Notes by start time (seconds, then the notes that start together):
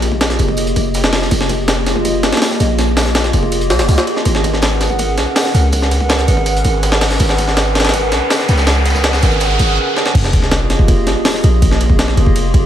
Already playing: A#1 A#3 F4 G4 G#4 D#5
0.02 snare, ride, tambourine
0.12 kick
0.21 snare, ride, tambourine
0.30 snare, closed hi-hat
0.39 F1, ride, tambourine
0.48 kick
0.57 ride, tambourine
0.67 closed hi-hat
0.76 F1, kick, ride, tambourine
0.94 snare, ride, tambourine
1.04 snare
1.13 snare, open hi-hat, ride
1.22 snare
1.31 F1 A#3 F4 G4 G#4 D#5, kick, ride, tambourine
1.41 snare
1.49 kick, ride, tambourine
1.68 snare, ride, tambourine
1.86 snare, ride, tambourine
1.96 kick
2.05 kick, ride, tambourine
2.23 G#1, snare, ride, tambourine
2.32 snare, ride
2.37 snare, ride
2.42 snare, open hi-hat, tambourine
2.51 snare
2.60 A#1, kick, snare, ride, tambourine
2.78 A#3 F4 G4 G#4 D#5, snare, ride, tambourine
2.97 snare, open hi-hat, tambourine
3.06 snare
3.15 snare, ride, tambourine
3.24 snare, closed hi-hat
3.33 F1, ride, tambourine
3.43 kick
3.52 ride, tambourine
3.61 closed hi-hat
3.70 C2, snare, ride, tambourine
3.79 F1, snare, ride
3.88 C2, snare, ride, tambourine
3.98 snare
4.07 ride
4.16 snare
4.25 G#1 C#4 G#4 A#4 B4 F#5, kick, ride, tambourine, riser
4.35 snare
4.44 kick, ride, tambourine
4.53 snare
4.62 snare, ride, tambourine
4.81 snare, ride, tambourine
4.90 kick
4.99 kick, ride, tambourine
5.18 B1, snare, ride, tambourine
5.36 snare, open hi-hat, tambourine
5.45 snare
5.54 C#2, snare, ride, tambourine
5.72 C#4 G#4 A#4 B4 F#5, kick, ride, tambourine
5.82 snare
5.91 snare, ride, tambourine
6.00 kick
6.09 snare, ride, tambourine
6.19 snare, closed hi-hat
6.28 G#1, ride, tambourine
6.37 kick
6.46 ride, tambourine
6.57 closed hi-hat
6.65 G#1, kick, ride, tambourine
6.83 snare, ride, tambourine
6.92 snare
7.01 snare, open hi-hat, ride
7.11 snare
7.20 G#1 C#4 G#4 A#4 B4 F#5, kick, ride, tambourine
7.29 snare
7.38 kick, ride, tambourine
7.48 snare
7.57 snare, ride, tambourine
7.75 snare, ride, tambourine
7.80 snare, ride
7.85 snare, ride
7.89 snare, ride
7.93 kick, ride, tambourine
8.12 B1, snare, ride, tambourine
8.30 snare, open hi-hat, tambourine
8.39 snare
8.48 C#2, kick, snare, ride, tambourine
8.57 snare, tambourine
8.67 C#4 G#4 A#4 B4 F#5, snare, ride, tambourine
8.86 snare, ride, tambourine
8.90 snare, tambourine
8.95 kick, snare, tambourine
9.04 snare, ride, tambourine
9.13 snare, tambourine
9.22 G#1, snare, ride, tambourine
9.31 kick, tambourine
9.40 snare, ride, tambourine
9.50 closed hi-hat
9.59 G#1, kick, ride, tambourine
9.96 snare
10.06 snare
10.15 F1 A#3 F4 G4 G#4 D#5, kick, crash, ride, sub drop
10.24 snare
10.33 kick, ride
10.42 snare
10.52 snare, ride
10.70 snare, ride
10.79 kick
10.88 kick, ride
11.07 G#1, snare, ride
11.25 snare, open hi-hat
11.34 snare
11.44 A#1, ride
11.62 A#3 F4 G4 G#4 D#5, kick, ride
11.71 snare
11.81 ride
11.90 kick
11.99 snare, ride
12.08 snare
12.17 F1, ride
12.27 kick
12.36 ride
12.54 F1, kick, ride